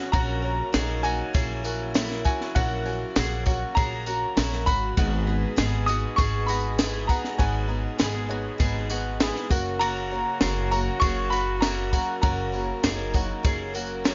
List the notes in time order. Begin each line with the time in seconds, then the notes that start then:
Already playing: F#3 B3 C#4 F#4 B4 C#5 D#5
0.12 A#1 A#2 C#3 F#3 A#3 C#4 F#4 A#4 C#5 A#5, kick, ride bell
0.42 F#3 A#3 C#4 F#4 A#4 C#5
0.73 A#1 F#3 A#3 C#4 D#4 F#4 G#4 A#4 C#5, snare, ride bell, tambourine
1.03 F#3 A#3 C#4 F#4 A#4 C#5 G#5, tambourine
1.33 A#1 F#3 A#3 C#4 E4 F#4 G#4 A#4 C#5, kick, ride bell, tambourine
1.64 F#3 A#3 C#4 F#4 A#4 C#5, tambourine
1.94 F#3 A#3 C#4 E4 F#4 A#4 C#5, snare, ride bell, tambourine
2.11 snare
2.25 F#3 A#3 C#4 F#4 A#4 C#5 G#5, kick, tambourine
2.41 snare
2.55 A#1 A#2 F#3 A#3 C#4 F#4 A#4 C#5 F#5, kick, ride bell, tambourine
2.85 F#3 A#3 C#4 F#4 A#4 C#5, tambourine
3.16 A#1 F#3 A#3 C#4 F#4 G#4 A#4 C#5, snare, ride bell, tambourine
3.46 F#3 A#3 C#4 F#4 A#4 C#5, kick, tambourine
3.75 A#1 F#3 A#3 C#4 F#4 G#4 A#4 C#5 A#5, kick, ride bell, tambourine
3.79 A#4
4.06 F#3 A#3 C#4 F#4 A#4 C#5, tambourine
4.37 A#1 F#3 A#3 C#4 E4 F#4 A#4 C#5, snare, ride bell, tambourine
4.53 snare
4.66 G#1 F#3 A#3 C#4 F#4 A#4 C#5 B5, kick, tambourine
4.71 C#4
4.97 G#1 G#2 B2 D#3 G#3 B3 D#4 F#4 G#4 B4 D#5, kick, ride bell
5.27 G#3 B3 D#4 G#4 B4 D#5
5.56 G#1 G#2 D#3 G#3 B3 D#4 G#4 B4 D#5, snare, ride bell, tambourine
5.86 G#3 B3 D#4 F#4 G#4 D#5 D#6, tambourine
6.16 G#1 G#3 B3 D#4 G#4 B4 D#5 C#6, kick, ride bell, tambourine
6.21 G#4
6.47 G#3 B3 D#4 F#4 G#4 B4 D#5 B5, tambourine
6.51 G#3
6.78 G#2 G#3 B3 D#4 E4 G#4 B4 D#5, snare, ride bell, tambourine
7.07 G#3 B3 D#4 F#4 G#4 B4 D#5 A#5, kick, tambourine
7.12 G#3
7.24 snare
7.38 G#1 G#2 D#3 G#3 B3 D#4 F#4 G#4 B4 C#5 G#5, kick, ride bell
7.67 G#3 B3 D#4 G#4 B4 D#5
7.71 G#3
7.98 G#1 G#2 D#3 G#3 B3 D#4 G#4 B4 D#5, snare, ride bell, tambourine
8.29 G#3 B3 D#4 F#4 G#4 B4 C#5
8.58 G#1 G#3 B3 D#4 G#4 B4 D#5, kick, ride bell, tambourine
8.89 G#3 B3 D#4 F#4 G#4 B4 D#5, tambourine
9.20 G#2 G#3 B3 D#4 E4 G#4 B4 D#5, snare, ride bell, tambourine
9.35 snare
9.50 F#1 F#2 C#3 F#3 A#3 C#4 F#4 A#4 C#5, kick, tambourine
9.79 F#2 C#3 F#3 A#3 C#4 F#4 A#4 A#5, ride bell
10.11 F#3 A#3 C#4 A#4 C#5
10.41 F#1 F#2 C#3 F#3 A#3 C#4 G#4 A#4 C#5, snare, ride bell, tambourine
10.71 F#3 A#3 C#4 F#4 A#4 C#5 A#5, tambourine
10.76 F#3
11.00 F#1 F#3 A#3 C#4 G#4 A#4 C#5 C#6, kick, ride bell, tambourine
11.04 C#4 A#4
11.30 F#3 A#3 C#4 F#4 A#4 C#5 B5, tambourine
11.35 F#3
11.61 F#2 C#3 F#3 A#3 C#4 E4 A#4 C#5 A#5, snare, ride bell, tambourine
11.65 A#4
11.93 F#1 F#2 F#3 A#3 C#4 F#4 A#4 C#5, kick, tambourine
12.22 F#1 F#2 C#3 F#3 A#3 C#4 F#4 A#4 C#5 A#5, kick, ride bell
12.52 F#3 A#3 C#4 A#4 C#5, tambourine
12.83 F#1 F#2 C#3 F#3 A#3 C#4 D#4 G#4 A#4 C#5, snare, ride bell, tambourine
13.13 F#3 A#3 C#4 F#4 A#4 C#5, kick, tambourine
13.43 F#1 F#3 A#3 C#4 G#4 A#4 C#5, kick, ride bell, tambourine
13.74 F#3 A#3 C#4 F#4 A#4 C#5, tambourine
14.04 F#2 C#3 F#3 A#3 C#4 E4 A#4 C#5, snare, ride bell, tambourine